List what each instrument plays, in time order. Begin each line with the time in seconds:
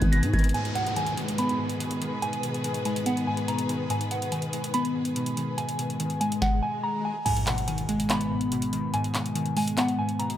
Already playing: synth keys G#2 B2 D#3 G#3 B3, string section D#3 B3 G#4 B4, synth bell G#6
0.02 808-style bass G#1, kick, closed hi-hat
0.12 synth keys B2, synth bell A#6, closed hi-hat
0.23 808-style bass G#2, closed hi-hat
0.34 808-style bass G#1, synth keys D#3, synth bell G#6, kick, closed hi-hat
0.39 closed hi-hat
0.44 closed hi-hat
0.49 closed hi-hat
0.54 synth keys G#2, string section D#3 B3 G#4 B4, synth bell G#5, closed hi-hat, downlifter
0.65 closed hi-hat
0.75 synth keys B2, synth bell F#5, closed hi-hat
0.87 closed hi-hat
0.96 synth keys D#3, synth bell G#5, closed hi-hat
1.06 closed hi-hat
1.17 synth keys G#3, closed hi-hat
1.28 closed hi-hat
1.38 synth keys B3, synth bell B5, closed hi-hat
1.49 closed hi-hat
1.60 synth keys G#2
1.69 closed hi-hat
1.80 synth keys B2, closed hi-hat
1.91 closed hi-hat
2.02 synth keys D#3, closed hi-hat
2.22 synth keys G#2, synth bell G#5, closed hi-hat
2.33 closed hi-hat
2.43 synth keys B2, closed hi-hat
2.54 closed hi-hat
2.64 synth keys D#3, closed hi-hat
2.74 closed hi-hat
2.85 synth keys G#3, synth bell G#5, closed hi-hat
2.96 closed hi-hat
3.06 synth keys B3, synth bell F#5, closed hi-hat
3.17 closed hi-hat
3.27 synth keys G#2, synth bell G#5
3.37 closed hi-hat
3.48 synth keys B2, synth bell A#5, closed hi-hat
3.59 closed hi-hat
3.69 synth keys D#3, closed hi-hat
3.90 synth keys G#2, synth bell G#5, closed hi-hat
4.01 closed hi-hat
4.11 synth keys B2, synth bell F#5, closed hi-hat
4.22 closed hi-hat
4.32 synth keys D#3, synth bell G#5, closed hi-hat
4.42 closed hi-hat
4.53 synth keys G#3, closed hi-hat
4.64 closed hi-hat
4.74 synth keys B3, synth bell B5, closed hi-hat
4.85 closed hi-hat
4.95 synth keys G#2
5.05 closed hi-hat
5.16 synth keys B2, closed hi-hat
5.26 closed hi-hat
5.37 synth keys D#3, closed hi-hat
5.58 synth keys G#2, synth bell G#5, closed hi-hat, swell
5.69 closed hi-hat
5.79 synth keys B2, closed hi-hat
5.90 closed hi-hat
6.00 synth keys D#3, closed hi-hat
6.10 closed hi-hat
6.21 synth keys G#3, synth bell G#5, closed hi-hat
6.32 closed hi-hat
6.42 synth bell F#5, kick, snare
6.63 synth bell G#5
6.83 synth bell A#5
7.05 synth bell G#5
7.25 synth keys G#2, synth bell G#5, closed hi-hat, crash, impact
7.37 closed hi-hat
7.47 synth keys B2, synth bell F#5, clap, closed hi-hat
7.58 closed hi-hat
7.68 synth keys D#3, synth bell G#5, closed hi-hat
7.78 closed hi-hat
7.89 synth keys G#3, closed hi-hat
8.00 closed hi-hat
8.10 synth keys B3, synth bell B5, clap, closed hi-hat
8.21 closed hi-hat
8.31 synth keys G#2
8.41 closed hi-hat
8.52 synth keys B2, closed hi-hat
8.62 closed hi-hat
8.73 synth keys D#3, closed hi-hat
8.94 synth keys G#2, synth bell G#5, closed hi-hat
9.04 closed hi-hat
9.15 synth keys B2, clap, closed hi-hat
9.26 closed hi-hat
9.35 synth keys D#3, closed hi-hat
9.46 closed hi-hat
9.57 synth keys G#3, synth bell G#5, open hi-hat
9.68 closed hi-hat
9.77 synth keys B3, synth bell F#5, clap, closed hi-hat
9.89 closed hi-hat
9.99 synth keys G#2, synth bell G#5
10.09 closed hi-hat
10.19 synth keys B2, synth bell A#5, closed hi-hat
10.30 closed hi-hat